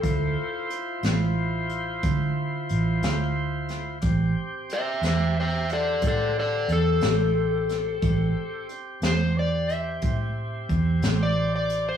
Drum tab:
HH |x-xx-xx-xx-x|x-xx-xx-xx-x|x-xx-xx-xx-x|
SD |---o-----o-o|---o-----o-o|---o-----o--|
BD |o-----o-----|o-----o-----|o-----o-o---|